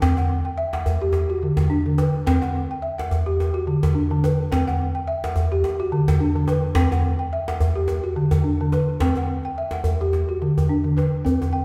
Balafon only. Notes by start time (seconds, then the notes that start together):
0.02 C4 G5
0.17 F#5
0.45 G5
0.58 E5
0.73 F#5
1.01 G4
1.30 F#4
1.43 D3
1.70 D4
1.86 D3
1.98 B4
2.27 C4 G5
2.42 F#5
2.71 G5
2.82 E5
2.98 F#5
3.26 G4
3.54 F#4
3.67 D3
3.95 D4
4.11 D3
4.24 B4
4.52 C4 G5
4.67 F#5
4.95 G5
5.07 E5
5.24 F#5
5.52 G4
5.80 F#4
5.92 D3
6.20 D4
6.36 D3
6.49 B4
6.76 C4 G5
6.92 F#5
7.19 G5
7.33 E5
7.48 F#5
7.75 G4
8.04 F#4
8.16 D3
8.44 D4
8.61 D3
8.73 B4
9.01 C4 G5
9.17 F#5
9.45 G5
9.58 E5
9.73 F#5
10.01 G4
10.29 F#4
10.42 D3
10.69 D4
10.84 D3
10.97 B4
11.25 C4
11.53 G5